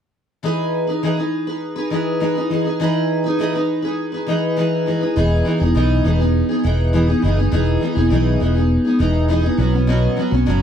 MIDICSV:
0, 0, Header, 1, 3, 480
1, 0, Start_track
1, 0, Key_signature, 4, "major"
1, 0, Tempo, 589971
1, 363, Time_signature, 4, 2, 24, 8
1, 8641, End_track
2, 0, Start_track
2, 0, Title_t, "Steel-string acoustic guitar"
2, 0, Program_c, 0, 25
2, 349, Note_on_c, 0, 52, 62
2, 355, Note_on_c, 0, 63, 74
2, 363, Note_on_c, 0, 68, 69
2, 369, Note_on_c, 0, 71, 76
2, 700, Note_off_c, 0, 71, 0
2, 709, Note_on_c, 0, 71, 42
2, 713, Note_off_c, 0, 68, 0
2, 716, Note_off_c, 0, 52, 0
2, 719, Note_off_c, 0, 63, 0
2, 722, Note_on_c, 0, 68, 39
2, 737, Note_on_c, 0, 63, 33
2, 832, Note_off_c, 0, 63, 0
2, 836, Note_off_c, 0, 71, 0
2, 837, Note_on_c, 0, 52, 59
2, 839, Note_off_c, 0, 68, 0
2, 842, Note_on_c, 0, 63, 64
2, 848, Note_on_c, 0, 68, 69
2, 854, Note_on_c, 0, 71, 67
2, 944, Note_off_c, 0, 71, 0
2, 954, Note_on_c, 0, 71, 52
2, 958, Note_off_c, 0, 68, 0
2, 960, Note_off_c, 0, 52, 0
2, 963, Note_off_c, 0, 63, 0
2, 968, Note_on_c, 0, 68, 37
2, 980, Note_on_c, 0, 63, 37
2, 1186, Note_off_c, 0, 71, 0
2, 1196, Note_on_c, 0, 71, 50
2, 1199, Note_off_c, 0, 68, 0
2, 1209, Note_on_c, 0, 68, 40
2, 1210, Note_off_c, 0, 63, 0
2, 1220, Note_on_c, 0, 63, 33
2, 1420, Note_off_c, 0, 71, 0
2, 1429, Note_on_c, 0, 71, 52
2, 1432, Note_off_c, 0, 68, 0
2, 1442, Note_on_c, 0, 68, 45
2, 1444, Note_off_c, 0, 63, 0
2, 1454, Note_on_c, 0, 63, 34
2, 1547, Note_off_c, 0, 63, 0
2, 1548, Note_on_c, 0, 52, 53
2, 1556, Note_off_c, 0, 68, 0
2, 1557, Note_off_c, 0, 71, 0
2, 1557, Note_on_c, 0, 63, 62
2, 1566, Note_on_c, 0, 68, 59
2, 1574, Note_on_c, 0, 71, 72
2, 1783, Note_off_c, 0, 52, 0
2, 1790, Note_off_c, 0, 63, 0
2, 1793, Note_on_c, 0, 52, 61
2, 1794, Note_off_c, 0, 68, 0
2, 1800, Note_on_c, 0, 63, 70
2, 1801, Note_off_c, 0, 71, 0
2, 1804, Note_on_c, 0, 68, 66
2, 1811, Note_on_c, 0, 71, 69
2, 1903, Note_off_c, 0, 71, 0
2, 1913, Note_on_c, 0, 71, 47
2, 1916, Note_off_c, 0, 68, 0
2, 1919, Note_off_c, 0, 52, 0
2, 1922, Note_off_c, 0, 63, 0
2, 1926, Note_on_c, 0, 68, 40
2, 1938, Note_on_c, 0, 63, 37
2, 2031, Note_off_c, 0, 63, 0
2, 2031, Note_on_c, 0, 52, 49
2, 2039, Note_off_c, 0, 71, 0
2, 2040, Note_off_c, 0, 68, 0
2, 2041, Note_on_c, 0, 63, 61
2, 2050, Note_on_c, 0, 68, 56
2, 2060, Note_on_c, 0, 71, 54
2, 2142, Note_off_c, 0, 71, 0
2, 2152, Note_on_c, 0, 71, 40
2, 2157, Note_off_c, 0, 68, 0
2, 2158, Note_off_c, 0, 52, 0
2, 2163, Note_off_c, 0, 63, 0
2, 2167, Note_on_c, 0, 68, 40
2, 2179, Note_on_c, 0, 63, 35
2, 2274, Note_off_c, 0, 63, 0
2, 2275, Note_on_c, 0, 52, 81
2, 2277, Note_off_c, 0, 68, 0
2, 2278, Note_off_c, 0, 71, 0
2, 2284, Note_on_c, 0, 63, 80
2, 2287, Note_on_c, 0, 68, 76
2, 2293, Note_on_c, 0, 71, 76
2, 2625, Note_off_c, 0, 71, 0
2, 2635, Note_on_c, 0, 71, 48
2, 2639, Note_off_c, 0, 68, 0
2, 2640, Note_off_c, 0, 52, 0
2, 2645, Note_off_c, 0, 63, 0
2, 2649, Note_on_c, 0, 68, 42
2, 2662, Note_on_c, 0, 63, 44
2, 2753, Note_off_c, 0, 63, 0
2, 2756, Note_on_c, 0, 52, 66
2, 2760, Note_off_c, 0, 68, 0
2, 2760, Note_off_c, 0, 71, 0
2, 2763, Note_on_c, 0, 63, 67
2, 2770, Note_on_c, 0, 68, 68
2, 2774, Note_on_c, 0, 71, 72
2, 2862, Note_off_c, 0, 71, 0
2, 2872, Note_on_c, 0, 71, 51
2, 2876, Note_off_c, 0, 68, 0
2, 2881, Note_off_c, 0, 52, 0
2, 2884, Note_off_c, 0, 63, 0
2, 2886, Note_on_c, 0, 68, 41
2, 2900, Note_on_c, 0, 63, 44
2, 3101, Note_off_c, 0, 71, 0
2, 3111, Note_on_c, 0, 71, 50
2, 3117, Note_off_c, 0, 68, 0
2, 3126, Note_on_c, 0, 68, 44
2, 3128, Note_off_c, 0, 63, 0
2, 3138, Note_on_c, 0, 63, 41
2, 3342, Note_off_c, 0, 71, 0
2, 3352, Note_on_c, 0, 71, 42
2, 3358, Note_off_c, 0, 68, 0
2, 3367, Note_off_c, 0, 63, 0
2, 3368, Note_on_c, 0, 68, 36
2, 3377, Note_on_c, 0, 63, 36
2, 3470, Note_on_c, 0, 52, 58
2, 3473, Note_off_c, 0, 63, 0
2, 3479, Note_off_c, 0, 68, 0
2, 3479, Note_off_c, 0, 71, 0
2, 3482, Note_on_c, 0, 63, 68
2, 3489, Note_on_c, 0, 68, 59
2, 3497, Note_on_c, 0, 71, 73
2, 3704, Note_off_c, 0, 52, 0
2, 3711, Note_off_c, 0, 63, 0
2, 3713, Note_on_c, 0, 52, 68
2, 3718, Note_off_c, 0, 68, 0
2, 3721, Note_on_c, 0, 63, 68
2, 3723, Note_off_c, 0, 71, 0
2, 3728, Note_on_c, 0, 68, 62
2, 3733, Note_on_c, 0, 71, 69
2, 3943, Note_off_c, 0, 52, 0
2, 3953, Note_off_c, 0, 63, 0
2, 3953, Note_on_c, 0, 52, 51
2, 3961, Note_off_c, 0, 68, 0
2, 3962, Note_on_c, 0, 63, 51
2, 3969, Note_off_c, 0, 71, 0
2, 3971, Note_on_c, 0, 68, 65
2, 3979, Note_on_c, 0, 71, 58
2, 4063, Note_off_c, 0, 71, 0
2, 4073, Note_on_c, 0, 71, 47
2, 4079, Note_off_c, 0, 52, 0
2, 4079, Note_off_c, 0, 68, 0
2, 4084, Note_off_c, 0, 63, 0
2, 4089, Note_on_c, 0, 68, 42
2, 4100, Note_on_c, 0, 63, 38
2, 4197, Note_on_c, 0, 52, 65
2, 4198, Note_off_c, 0, 63, 0
2, 4199, Note_off_c, 0, 71, 0
2, 4202, Note_on_c, 0, 59, 66
2, 4204, Note_off_c, 0, 68, 0
2, 4208, Note_on_c, 0, 63, 80
2, 4215, Note_on_c, 0, 68, 79
2, 4424, Note_off_c, 0, 52, 0
2, 4434, Note_on_c, 0, 52, 61
2, 4435, Note_off_c, 0, 59, 0
2, 4443, Note_off_c, 0, 63, 0
2, 4445, Note_on_c, 0, 59, 57
2, 4450, Note_off_c, 0, 68, 0
2, 4453, Note_on_c, 0, 63, 53
2, 4462, Note_on_c, 0, 68, 54
2, 4545, Note_off_c, 0, 68, 0
2, 4555, Note_on_c, 0, 68, 54
2, 4559, Note_off_c, 0, 63, 0
2, 4560, Note_off_c, 0, 52, 0
2, 4565, Note_off_c, 0, 59, 0
2, 4568, Note_on_c, 0, 63, 42
2, 4581, Note_on_c, 0, 59, 41
2, 4673, Note_off_c, 0, 59, 0
2, 4676, Note_on_c, 0, 52, 66
2, 4680, Note_off_c, 0, 63, 0
2, 4680, Note_off_c, 0, 68, 0
2, 4683, Note_on_c, 0, 59, 68
2, 4690, Note_on_c, 0, 63, 73
2, 4697, Note_on_c, 0, 68, 78
2, 4905, Note_off_c, 0, 52, 0
2, 4915, Note_on_c, 0, 52, 55
2, 4916, Note_off_c, 0, 59, 0
2, 4923, Note_off_c, 0, 63, 0
2, 4925, Note_on_c, 0, 59, 58
2, 4931, Note_off_c, 0, 68, 0
2, 4933, Note_on_c, 0, 63, 57
2, 4941, Note_on_c, 0, 68, 63
2, 5026, Note_off_c, 0, 68, 0
2, 5036, Note_on_c, 0, 68, 47
2, 5040, Note_off_c, 0, 52, 0
2, 5042, Note_off_c, 0, 63, 0
2, 5045, Note_off_c, 0, 59, 0
2, 5052, Note_on_c, 0, 63, 48
2, 5061, Note_on_c, 0, 59, 45
2, 5269, Note_off_c, 0, 68, 0
2, 5278, Note_on_c, 0, 68, 47
2, 5284, Note_off_c, 0, 63, 0
2, 5293, Note_off_c, 0, 59, 0
2, 5293, Note_on_c, 0, 63, 39
2, 5303, Note_on_c, 0, 59, 39
2, 5396, Note_off_c, 0, 59, 0
2, 5398, Note_on_c, 0, 52, 58
2, 5402, Note_off_c, 0, 68, 0
2, 5406, Note_on_c, 0, 59, 68
2, 5407, Note_off_c, 0, 63, 0
2, 5417, Note_on_c, 0, 63, 65
2, 5424, Note_on_c, 0, 68, 67
2, 5629, Note_off_c, 0, 52, 0
2, 5636, Note_off_c, 0, 59, 0
2, 5639, Note_off_c, 0, 63, 0
2, 5639, Note_on_c, 0, 52, 64
2, 5645, Note_off_c, 0, 68, 0
2, 5646, Note_on_c, 0, 59, 62
2, 5649, Note_on_c, 0, 63, 65
2, 5654, Note_on_c, 0, 68, 76
2, 5744, Note_off_c, 0, 68, 0
2, 5754, Note_on_c, 0, 68, 49
2, 5761, Note_off_c, 0, 63, 0
2, 5762, Note_off_c, 0, 52, 0
2, 5765, Note_off_c, 0, 59, 0
2, 5771, Note_on_c, 0, 63, 46
2, 5785, Note_on_c, 0, 59, 46
2, 5875, Note_off_c, 0, 59, 0
2, 5875, Note_on_c, 0, 52, 54
2, 5879, Note_off_c, 0, 68, 0
2, 5885, Note_on_c, 0, 59, 55
2, 5886, Note_off_c, 0, 63, 0
2, 5895, Note_on_c, 0, 63, 62
2, 5903, Note_on_c, 0, 68, 62
2, 5985, Note_off_c, 0, 68, 0
2, 5995, Note_on_c, 0, 68, 43
2, 5998, Note_off_c, 0, 63, 0
2, 6000, Note_off_c, 0, 52, 0
2, 6005, Note_off_c, 0, 59, 0
2, 6008, Note_on_c, 0, 63, 41
2, 6022, Note_on_c, 0, 59, 39
2, 6113, Note_off_c, 0, 59, 0
2, 6115, Note_on_c, 0, 52, 78
2, 6119, Note_off_c, 0, 63, 0
2, 6120, Note_off_c, 0, 68, 0
2, 6123, Note_on_c, 0, 59, 69
2, 6129, Note_on_c, 0, 63, 73
2, 6133, Note_on_c, 0, 68, 82
2, 6345, Note_off_c, 0, 52, 0
2, 6354, Note_on_c, 0, 52, 50
2, 6357, Note_off_c, 0, 59, 0
2, 6364, Note_off_c, 0, 63, 0
2, 6367, Note_on_c, 0, 59, 59
2, 6369, Note_off_c, 0, 68, 0
2, 6374, Note_on_c, 0, 63, 61
2, 6381, Note_on_c, 0, 68, 66
2, 6459, Note_off_c, 0, 68, 0
2, 6469, Note_on_c, 0, 68, 59
2, 6473, Note_off_c, 0, 63, 0
2, 6479, Note_off_c, 0, 52, 0
2, 6482, Note_on_c, 0, 63, 44
2, 6486, Note_off_c, 0, 59, 0
2, 6496, Note_on_c, 0, 59, 44
2, 6591, Note_off_c, 0, 59, 0
2, 6593, Note_on_c, 0, 52, 67
2, 6596, Note_off_c, 0, 63, 0
2, 6597, Note_off_c, 0, 68, 0
2, 6601, Note_on_c, 0, 59, 68
2, 6605, Note_on_c, 0, 63, 68
2, 6611, Note_on_c, 0, 68, 78
2, 6823, Note_off_c, 0, 52, 0
2, 6833, Note_on_c, 0, 52, 53
2, 6834, Note_off_c, 0, 59, 0
2, 6841, Note_off_c, 0, 63, 0
2, 6843, Note_on_c, 0, 59, 55
2, 6847, Note_off_c, 0, 68, 0
2, 6851, Note_on_c, 0, 63, 54
2, 6861, Note_on_c, 0, 68, 64
2, 6947, Note_off_c, 0, 68, 0
2, 6957, Note_on_c, 0, 68, 52
2, 6958, Note_off_c, 0, 52, 0
2, 6961, Note_off_c, 0, 63, 0
2, 6963, Note_off_c, 0, 59, 0
2, 6971, Note_on_c, 0, 63, 47
2, 6982, Note_on_c, 0, 59, 42
2, 7187, Note_off_c, 0, 68, 0
2, 7196, Note_on_c, 0, 68, 42
2, 7201, Note_off_c, 0, 63, 0
2, 7211, Note_on_c, 0, 63, 48
2, 7212, Note_off_c, 0, 59, 0
2, 7223, Note_on_c, 0, 59, 42
2, 7312, Note_off_c, 0, 59, 0
2, 7313, Note_on_c, 0, 52, 60
2, 7320, Note_off_c, 0, 63, 0
2, 7320, Note_off_c, 0, 68, 0
2, 7322, Note_on_c, 0, 59, 68
2, 7330, Note_on_c, 0, 63, 65
2, 7338, Note_on_c, 0, 68, 68
2, 7544, Note_off_c, 0, 52, 0
2, 7552, Note_off_c, 0, 59, 0
2, 7554, Note_on_c, 0, 52, 64
2, 7558, Note_off_c, 0, 63, 0
2, 7561, Note_on_c, 0, 59, 77
2, 7562, Note_off_c, 0, 68, 0
2, 7568, Note_on_c, 0, 63, 82
2, 7572, Note_on_c, 0, 68, 74
2, 7663, Note_off_c, 0, 68, 0
2, 7672, Note_on_c, 0, 68, 54
2, 7677, Note_off_c, 0, 63, 0
2, 7678, Note_off_c, 0, 52, 0
2, 7682, Note_off_c, 0, 59, 0
2, 7686, Note_on_c, 0, 63, 45
2, 7697, Note_on_c, 0, 59, 42
2, 7790, Note_on_c, 0, 54, 57
2, 7792, Note_off_c, 0, 59, 0
2, 7797, Note_off_c, 0, 68, 0
2, 7802, Note_on_c, 0, 59, 61
2, 7804, Note_off_c, 0, 63, 0
2, 7809, Note_on_c, 0, 61, 61
2, 7819, Note_on_c, 0, 66, 60
2, 7902, Note_off_c, 0, 66, 0
2, 7912, Note_on_c, 0, 66, 41
2, 7916, Note_off_c, 0, 54, 0
2, 7917, Note_off_c, 0, 61, 0
2, 7922, Note_off_c, 0, 59, 0
2, 7927, Note_on_c, 0, 61, 41
2, 7937, Note_on_c, 0, 59, 37
2, 8033, Note_on_c, 0, 47, 79
2, 8034, Note_off_c, 0, 59, 0
2, 8036, Note_off_c, 0, 61, 0
2, 8037, Note_off_c, 0, 66, 0
2, 8039, Note_on_c, 0, 54, 70
2, 8044, Note_on_c, 0, 59, 69
2, 8046, Note_on_c, 0, 61, 80
2, 8052, Note_on_c, 0, 66, 79
2, 8261, Note_off_c, 0, 54, 0
2, 8269, Note_off_c, 0, 59, 0
2, 8270, Note_on_c, 0, 54, 59
2, 8277, Note_off_c, 0, 47, 0
2, 8278, Note_off_c, 0, 61, 0
2, 8279, Note_on_c, 0, 59, 59
2, 8285, Note_off_c, 0, 66, 0
2, 8288, Note_on_c, 0, 61, 68
2, 8294, Note_on_c, 0, 66, 55
2, 8381, Note_off_c, 0, 66, 0
2, 8390, Note_on_c, 0, 66, 55
2, 8396, Note_off_c, 0, 54, 0
2, 8396, Note_off_c, 0, 61, 0
2, 8400, Note_off_c, 0, 59, 0
2, 8406, Note_on_c, 0, 61, 51
2, 8417, Note_on_c, 0, 59, 47
2, 8511, Note_off_c, 0, 59, 0
2, 8512, Note_on_c, 0, 47, 68
2, 8516, Note_off_c, 0, 66, 0
2, 8516, Note_on_c, 0, 54, 77
2, 8517, Note_off_c, 0, 61, 0
2, 8520, Note_on_c, 0, 59, 60
2, 8527, Note_on_c, 0, 61, 73
2, 8528, Note_on_c, 0, 66, 78
2, 8641, Note_off_c, 0, 47, 0
2, 8641, Note_off_c, 0, 54, 0
2, 8641, Note_off_c, 0, 59, 0
2, 8641, Note_off_c, 0, 61, 0
2, 8641, Note_off_c, 0, 66, 0
2, 8641, End_track
3, 0, Start_track
3, 0, Title_t, "Fretless electric bass"
3, 0, Program_c, 1, 35
3, 4206, Note_on_c, 1, 28, 80
3, 4403, Note_off_c, 1, 28, 0
3, 4566, Note_on_c, 1, 28, 76
3, 4664, Note_off_c, 1, 28, 0
3, 4685, Note_on_c, 1, 35, 72
3, 4882, Note_off_c, 1, 35, 0
3, 4921, Note_on_c, 1, 28, 60
3, 5218, Note_off_c, 1, 28, 0
3, 5407, Note_on_c, 1, 28, 74
3, 5800, Note_off_c, 1, 28, 0
3, 5885, Note_on_c, 1, 30, 66
3, 6082, Note_off_c, 1, 30, 0
3, 6121, Note_on_c, 1, 28, 76
3, 6319, Note_off_c, 1, 28, 0
3, 6481, Note_on_c, 1, 28, 75
3, 6581, Note_off_c, 1, 28, 0
3, 6602, Note_on_c, 1, 35, 87
3, 6800, Note_off_c, 1, 35, 0
3, 6842, Note_on_c, 1, 28, 76
3, 7137, Note_off_c, 1, 28, 0
3, 7321, Note_on_c, 1, 28, 82
3, 7715, Note_off_c, 1, 28, 0
3, 7798, Note_on_c, 1, 35, 79
3, 8193, Note_off_c, 1, 35, 0
3, 8397, Note_on_c, 1, 35, 78
3, 8497, Note_off_c, 1, 35, 0
3, 8520, Note_on_c, 1, 30, 85
3, 8641, Note_off_c, 1, 30, 0
3, 8641, End_track
0, 0, End_of_file